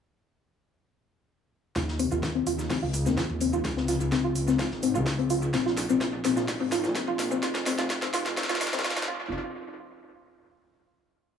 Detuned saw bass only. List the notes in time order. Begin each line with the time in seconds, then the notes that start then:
1.76 D#2
2.12 D#2
2.47 D#2
2.83 C#2
3.06 D#2
3.30 D#2
3.65 C#2
4.01 C#2
4.36 C#2
4.72 G#1
4.95 C#2
5.19 C#2
5.54 A#1
5.90 A#1
6.25 A#1
6.61 G#1
6.84 A#1
7.08 A#1
7.43 F1
7.79 F1
8.14 F1
8.49 F1
8.73 C2
8.97 F2
9.08 F1